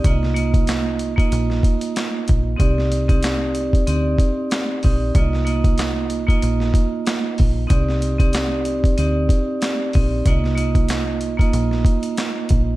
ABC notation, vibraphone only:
X:1
M:4/4
L:1/16
Q:"Swing 16ths" 1/4=94
K:Bbmix
V:1 name="Vibraphone"
[B,EFe]2 [B,EFe]4- [B,EFe] [B,EFe]8 z | [CEGd]3 [CEGd]4- [CEGd] [CEGd]6 [CEGd]2 | [B,EFe]2 [B,EFe]4- [B,EFe] [B,EFe]8 z | [CEGd]3 [CEGd]4- [CEGd] [CEGd]6 [CEGd]2 |
[B,EFe]2 [B,EFe]4- [B,EFe] [B,EFe]8 z |]